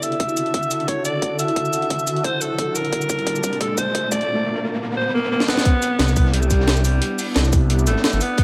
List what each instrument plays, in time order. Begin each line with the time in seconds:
Already playing: ambient pad C#3 D3 E4 F#4 A4
0.03 alto saxophone E5, closed hi-hat, cabasa
0.12 closed hi-hat
0.20 kick, closed hi-hat, riser
0.29 cabasa
0.37 closed hi-hat, cabasa
0.46 closed hi-hat
0.54 kick, closed hi-hat
0.63 cabasa
0.71 closed hi-hat, cabasa
0.80 closed hi-hat
0.88 alto saxophone C#5, kick, closed hi-hat
1.05 alto saxophone D5, closed hi-hat, cabasa
1.22 kick, closed hi-hat
1.39 alto saxophone E5, closed hi-hat, cabasa
1.48 closed hi-hat
1.56 kick, closed hi-hat
1.65 cabasa
1.73 closed hi-hat, cabasa
1.82 closed hi-hat
1.90 kick, closed hi-hat
1.99 cabasa
2.07 closed hi-hat, cabasa
2.16 closed hi-hat
2.24 ambient pad A#2 C4 D4 F4 A5, alto saxophone C5, kick, closed hi-hat
2.41 alto saxophone A4, closed hi-hat, cabasa
2.58 kick, closed hi-hat
2.75 alto saxophone A#4, closed hi-hat, cabasa
2.85 closed hi-hat
2.93 kick, closed hi-hat
3.02 cabasa
3.10 kick, closed hi-hat, cabasa
3.19 closed hi-hat
3.27 kick, closed hi-hat
3.36 cabasa
3.44 kick, closed hi-hat, cabasa
3.53 closed hi-hat
3.61 alto saxophone A4, kick, closed hi-hat
3.78 alto saxophone C5, kick, closed hi-hat, cabasa
3.95 kick, closed hi-hat
4.12 alto saxophone D5, kick, closed hi-hat, cabasa
4.21 closed hi-hat
4.97 alto saxophone C5
5.14 alto saxophone A#3
5.31 alto saxophone A#3
5.40 snare
5.48 alto saxophone B3, snare
5.57 snare
5.65 ambient pad B3 D4 E4, kick, closed hi-hat
5.82 closed hi-hat, cabasa
5.99 detuned saw bass C2, snare, closed hi-hat
6.09 snare, cabasa
6.16 kick, closed hi-hat, open hi-hat, cabasa
6.25 snare
6.33 detuned saw bass C2, alto saxophone G3, closed hi-hat
6.41 alto saxophone A3, cabasa
6.48 alto saxophone G3, kick, closed hi-hat, cabasa
6.60 snare
6.67 snare, closed hi-hat
6.77 closed hi-hat, cabasa
6.85 alto saxophone G3, closed hi-hat, open hi-hat, cabasa
7.02 closed hi-hat
7.19 closed hi-hat, open hi-hat, cabasa
7.34 snare, closed hi-hat
7.36 detuned saw bass C2, closed hi-hat
7.45 snare, cabasa
7.53 kick, closed hi-hat, open hi-hat, cabasa
7.70 closed hi-hat
7.79 cabasa
7.87 detuned saw bass G1, alto saxophone A3, closed hi-hat, cabasa
7.96 snare
8.04 alto saxophone A3, snare, closed hi-hat
8.13 detuned saw bass G1, closed hi-hat, cabasa
8.21 alto saxophone B3, closed hi-hat, open hi-hat, cabasa
8.37 kick, closed hi-hat